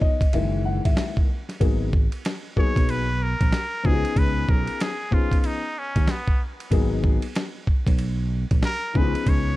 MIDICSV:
0, 0, Header, 1, 5, 480
1, 0, Start_track
1, 0, Tempo, 638298
1, 1208, Time_signature, 4, 2, 24, 8
1, 7193, End_track
2, 0, Start_track
2, 0, Title_t, "Muted trumpet"
2, 0, Program_c, 0, 59
2, 1940, Note_on_c, 0, 73, 94
2, 2183, Note_on_c, 0, 71, 106
2, 2194, Note_off_c, 0, 73, 0
2, 2427, Note_on_c, 0, 70, 101
2, 2438, Note_off_c, 0, 71, 0
2, 2902, Note_on_c, 0, 68, 102
2, 2913, Note_off_c, 0, 70, 0
2, 3144, Note_on_c, 0, 71, 99
2, 3155, Note_off_c, 0, 68, 0
2, 3383, Note_on_c, 0, 70, 89
2, 3394, Note_off_c, 0, 71, 0
2, 3622, Note_on_c, 0, 68, 90
2, 3634, Note_off_c, 0, 70, 0
2, 3862, Note_on_c, 0, 65, 81
2, 3873, Note_off_c, 0, 68, 0
2, 4060, Note_off_c, 0, 65, 0
2, 4060, Note_on_c, 0, 65, 63
2, 4106, Note_on_c, 0, 63, 95
2, 4117, Note_off_c, 0, 65, 0
2, 4351, Note_on_c, 0, 61, 83
2, 4363, Note_off_c, 0, 63, 0
2, 4593, Note_on_c, 0, 59, 74
2, 4604, Note_off_c, 0, 61, 0
2, 4821, Note_off_c, 0, 59, 0
2, 6508, Note_on_c, 0, 70, 113
2, 6747, Note_on_c, 0, 71, 99
2, 6758, Note_off_c, 0, 70, 0
2, 6987, Note_on_c, 0, 73, 102
2, 6998, Note_off_c, 0, 71, 0
2, 7193, Note_off_c, 0, 73, 0
2, 7193, End_track
3, 0, Start_track
3, 0, Title_t, "Grand piano"
3, 0, Program_c, 1, 0
3, 0, Note_on_c, 1, 53, 53
3, 0, Note_on_c, 1, 59, 44
3, 0, Note_on_c, 1, 63, 61
3, 9, Note_on_c, 1, 75, 91
3, 109, Note_off_c, 1, 53, 0
3, 113, Note_off_c, 1, 59, 0
3, 116, Note_off_c, 1, 63, 0
3, 249, Note_on_c, 1, 52, 49
3, 251, Note_on_c, 1, 56, 45
3, 251, Note_on_c, 1, 76, 80
3, 255, Note_on_c, 1, 58, 45
3, 256, Note_off_c, 1, 75, 0
3, 259, Note_on_c, 1, 51, 60
3, 490, Note_on_c, 1, 78, 86
3, 497, Note_off_c, 1, 76, 0
3, 639, Note_on_c, 1, 76, 76
3, 643, Note_off_c, 1, 78, 0
3, 862, Note_off_c, 1, 76, 0
3, 939, Note_off_c, 1, 52, 0
3, 940, Note_off_c, 1, 56, 0
3, 942, Note_off_c, 1, 58, 0
3, 944, Note_off_c, 1, 51, 0
3, 1203, Note_on_c, 1, 54, 70
3, 1207, Note_on_c, 1, 58, 74
3, 1211, Note_on_c, 1, 59, 70
3, 1217, Note_on_c, 1, 63, 61
3, 1222, Note_on_c, 1, 68, 76
3, 1391, Note_off_c, 1, 54, 0
3, 1393, Note_off_c, 1, 58, 0
3, 1396, Note_off_c, 1, 59, 0
3, 1399, Note_off_c, 1, 63, 0
3, 1401, Note_off_c, 1, 68, 0
3, 1926, Note_on_c, 1, 54, 78
3, 1931, Note_on_c, 1, 58, 69
3, 1935, Note_on_c, 1, 59, 68
3, 1941, Note_on_c, 1, 63, 66
3, 1944, Note_on_c, 1, 68, 83
3, 2287, Note_off_c, 1, 54, 0
3, 2289, Note_off_c, 1, 58, 0
3, 2291, Note_off_c, 1, 59, 0
3, 2294, Note_off_c, 1, 63, 0
3, 2296, Note_off_c, 1, 68, 0
3, 2882, Note_on_c, 1, 53, 69
3, 2886, Note_on_c, 1, 59, 76
3, 2892, Note_on_c, 1, 61, 66
3, 2897, Note_on_c, 1, 63, 79
3, 2899, Note_on_c, 1, 66, 61
3, 2951, Note_on_c, 1, 68, 91
3, 2955, Note_off_c, 1, 66, 0
3, 3665, Note_off_c, 1, 53, 0
3, 3667, Note_off_c, 1, 59, 0
3, 3670, Note_off_c, 1, 61, 0
3, 3672, Note_off_c, 1, 63, 0
3, 3700, Note_off_c, 1, 68, 0
3, 3841, Note_on_c, 1, 53, 71
3, 3846, Note_on_c, 1, 59, 63
3, 3853, Note_on_c, 1, 61, 60
3, 3856, Note_on_c, 1, 63, 62
3, 3862, Note_on_c, 1, 68, 80
3, 4204, Note_off_c, 1, 53, 0
3, 4207, Note_off_c, 1, 59, 0
3, 4210, Note_off_c, 1, 61, 0
3, 4212, Note_off_c, 1, 63, 0
3, 4215, Note_off_c, 1, 68, 0
3, 5042, Note_on_c, 1, 54, 83
3, 5048, Note_on_c, 1, 58, 75
3, 5054, Note_on_c, 1, 59, 84
3, 5056, Note_on_c, 1, 63, 79
3, 5061, Note_on_c, 1, 68, 99
3, 5405, Note_off_c, 1, 54, 0
3, 5408, Note_off_c, 1, 58, 0
3, 5411, Note_off_c, 1, 59, 0
3, 5412, Note_off_c, 1, 63, 0
3, 5414, Note_off_c, 1, 68, 0
3, 6718, Note_on_c, 1, 52, 62
3, 6724, Note_on_c, 1, 59, 80
3, 6729, Note_on_c, 1, 61, 71
3, 6734, Note_on_c, 1, 63, 69
3, 6738, Note_on_c, 1, 68, 89
3, 6768, Note_on_c, 1, 53, 77
3, 6784, Note_off_c, 1, 52, 0
3, 7193, Note_off_c, 1, 53, 0
3, 7193, Note_off_c, 1, 59, 0
3, 7193, Note_off_c, 1, 61, 0
3, 7193, Note_off_c, 1, 63, 0
3, 7193, Note_off_c, 1, 68, 0
3, 7193, End_track
4, 0, Start_track
4, 0, Title_t, "Fretless electric bass"
4, 0, Program_c, 2, 35
4, 255, Note_on_c, 2, 30, 113
4, 596, Note_off_c, 2, 30, 0
4, 642, Note_on_c, 2, 32, 76
4, 720, Note_off_c, 2, 32, 0
4, 1211, Note_on_c, 2, 32, 92
4, 1554, Note_off_c, 2, 32, 0
4, 2078, Note_on_c, 2, 35, 89
4, 2502, Note_off_c, 2, 35, 0
4, 2563, Note_on_c, 2, 34, 91
4, 2641, Note_off_c, 2, 34, 0
4, 2895, Note_on_c, 2, 37, 89
4, 3024, Note_off_c, 2, 37, 0
4, 3132, Note_on_c, 2, 37, 89
4, 3343, Note_off_c, 2, 37, 0
4, 3374, Note_on_c, 2, 35, 82
4, 3504, Note_off_c, 2, 35, 0
4, 4484, Note_on_c, 2, 39, 84
4, 4561, Note_off_c, 2, 39, 0
4, 5050, Note_on_c, 2, 32, 94
4, 5393, Note_off_c, 2, 32, 0
4, 5915, Note_on_c, 2, 35, 96
4, 6341, Note_off_c, 2, 35, 0
4, 6401, Note_on_c, 2, 34, 87
4, 6480, Note_off_c, 2, 34, 0
4, 6734, Note_on_c, 2, 37, 93
4, 6863, Note_off_c, 2, 37, 0
4, 6969, Note_on_c, 2, 37, 94
4, 7181, Note_off_c, 2, 37, 0
4, 7193, End_track
5, 0, Start_track
5, 0, Title_t, "Drums"
5, 12, Note_on_c, 9, 36, 85
5, 87, Note_off_c, 9, 36, 0
5, 156, Note_on_c, 9, 36, 87
5, 163, Note_on_c, 9, 51, 57
5, 232, Note_off_c, 9, 36, 0
5, 238, Note_off_c, 9, 51, 0
5, 249, Note_on_c, 9, 51, 62
5, 324, Note_off_c, 9, 51, 0
5, 641, Note_on_c, 9, 51, 64
5, 642, Note_on_c, 9, 36, 89
5, 716, Note_off_c, 9, 51, 0
5, 717, Note_off_c, 9, 36, 0
5, 729, Note_on_c, 9, 38, 119
5, 739, Note_on_c, 9, 44, 47
5, 739, Note_on_c, 9, 51, 72
5, 804, Note_off_c, 9, 38, 0
5, 814, Note_off_c, 9, 44, 0
5, 814, Note_off_c, 9, 51, 0
5, 879, Note_on_c, 9, 36, 88
5, 955, Note_off_c, 9, 36, 0
5, 1120, Note_on_c, 9, 38, 34
5, 1124, Note_on_c, 9, 51, 51
5, 1195, Note_off_c, 9, 38, 0
5, 1200, Note_off_c, 9, 51, 0
5, 1210, Note_on_c, 9, 36, 109
5, 1211, Note_on_c, 9, 51, 69
5, 1285, Note_off_c, 9, 36, 0
5, 1286, Note_off_c, 9, 51, 0
5, 1453, Note_on_c, 9, 36, 104
5, 1528, Note_off_c, 9, 36, 0
5, 1595, Note_on_c, 9, 51, 54
5, 1670, Note_off_c, 9, 51, 0
5, 1692, Note_on_c, 9, 44, 52
5, 1692, Note_on_c, 9, 51, 81
5, 1699, Note_on_c, 9, 38, 102
5, 1767, Note_off_c, 9, 44, 0
5, 1767, Note_off_c, 9, 51, 0
5, 1774, Note_off_c, 9, 38, 0
5, 1932, Note_on_c, 9, 36, 84
5, 2007, Note_off_c, 9, 36, 0
5, 2077, Note_on_c, 9, 36, 90
5, 2085, Note_on_c, 9, 51, 61
5, 2153, Note_off_c, 9, 36, 0
5, 2160, Note_off_c, 9, 51, 0
5, 2171, Note_on_c, 9, 51, 67
5, 2247, Note_off_c, 9, 51, 0
5, 2562, Note_on_c, 9, 51, 60
5, 2563, Note_on_c, 9, 36, 89
5, 2637, Note_off_c, 9, 51, 0
5, 2638, Note_off_c, 9, 36, 0
5, 2651, Note_on_c, 9, 38, 109
5, 2661, Note_on_c, 9, 44, 48
5, 2661, Note_on_c, 9, 51, 68
5, 2726, Note_off_c, 9, 38, 0
5, 2736, Note_off_c, 9, 44, 0
5, 2736, Note_off_c, 9, 51, 0
5, 2894, Note_on_c, 9, 36, 91
5, 2969, Note_off_c, 9, 36, 0
5, 3044, Note_on_c, 9, 51, 53
5, 3119, Note_off_c, 9, 51, 0
5, 3130, Note_on_c, 9, 36, 107
5, 3132, Note_on_c, 9, 51, 72
5, 3205, Note_off_c, 9, 36, 0
5, 3208, Note_off_c, 9, 51, 0
5, 3373, Note_on_c, 9, 36, 99
5, 3449, Note_off_c, 9, 36, 0
5, 3515, Note_on_c, 9, 51, 53
5, 3590, Note_off_c, 9, 51, 0
5, 3613, Note_on_c, 9, 44, 58
5, 3613, Note_on_c, 9, 51, 79
5, 3620, Note_on_c, 9, 38, 100
5, 3688, Note_off_c, 9, 44, 0
5, 3688, Note_off_c, 9, 51, 0
5, 3695, Note_off_c, 9, 38, 0
5, 3852, Note_on_c, 9, 36, 83
5, 3927, Note_off_c, 9, 36, 0
5, 3997, Note_on_c, 9, 36, 89
5, 4005, Note_on_c, 9, 51, 60
5, 4072, Note_off_c, 9, 36, 0
5, 4080, Note_off_c, 9, 51, 0
5, 4089, Note_on_c, 9, 51, 69
5, 4164, Note_off_c, 9, 51, 0
5, 4480, Note_on_c, 9, 51, 63
5, 4481, Note_on_c, 9, 36, 94
5, 4556, Note_off_c, 9, 36, 0
5, 4556, Note_off_c, 9, 51, 0
5, 4568, Note_on_c, 9, 38, 101
5, 4578, Note_on_c, 9, 44, 41
5, 4578, Note_on_c, 9, 51, 65
5, 4643, Note_off_c, 9, 38, 0
5, 4654, Note_off_c, 9, 44, 0
5, 4654, Note_off_c, 9, 51, 0
5, 4719, Note_on_c, 9, 36, 82
5, 4794, Note_off_c, 9, 36, 0
5, 4965, Note_on_c, 9, 51, 53
5, 5040, Note_off_c, 9, 51, 0
5, 5049, Note_on_c, 9, 36, 106
5, 5051, Note_on_c, 9, 51, 81
5, 5124, Note_off_c, 9, 36, 0
5, 5126, Note_off_c, 9, 51, 0
5, 5292, Note_on_c, 9, 36, 90
5, 5367, Note_off_c, 9, 36, 0
5, 5432, Note_on_c, 9, 51, 65
5, 5507, Note_off_c, 9, 51, 0
5, 5530, Note_on_c, 9, 44, 54
5, 5530, Note_on_c, 9, 51, 74
5, 5538, Note_on_c, 9, 38, 113
5, 5606, Note_off_c, 9, 44, 0
5, 5606, Note_off_c, 9, 51, 0
5, 5613, Note_off_c, 9, 38, 0
5, 5770, Note_on_c, 9, 36, 81
5, 5845, Note_off_c, 9, 36, 0
5, 5915, Note_on_c, 9, 36, 86
5, 5922, Note_on_c, 9, 51, 65
5, 5990, Note_off_c, 9, 36, 0
5, 5997, Note_off_c, 9, 51, 0
5, 6005, Note_on_c, 9, 51, 68
5, 6080, Note_off_c, 9, 51, 0
5, 6399, Note_on_c, 9, 51, 55
5, 6400, Note_on_c, 9, 36, 92
5, 6474, Note_off_c, 9, 51, 0
5, 6475, Note_off_c, 9, 36, 0
5, 6487, Note_on_c, 9, 38, 114
5, 6497, Note_on_c, 9, 44, 47
5, 6497, Note_on_c, 9, 51, 66
5, 6562, Note_off_c, 9, 38, 0
5, 6572, Note_off_c, 9, 44, 0
5, 6572, Note_off_c, 9, 51, 0
5, 6732, Note_on_c, 9, 36, 85
5, 6807, Note_off_c, 9, 36, 0
5, 6882, Note_on_c, 9, 51, 54
5, 6957, Note_off_c, 9, 51, 0
5, 6967, Note_on_c, 9, 36, 107
5, 6968, Note_on_c, 9, 51, 80
5, 7043, Note_off_c, 9, 36, 0
5, 7043, Note_off_c, 9, 51, 0
5, 7193, End_track
0, 0, End_of_file